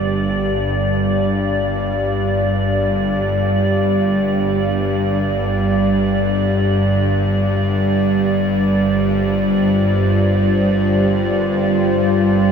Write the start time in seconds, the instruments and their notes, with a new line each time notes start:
Already playing: synth drone G1 G2, singing bowl D3, analog synth pad G4 D5 F5, ambient pad D5
7.45 analog synth pad G3
8.11 analog synth pad C5
8.74 analog synth pad F4
9.86 analog synth pad G5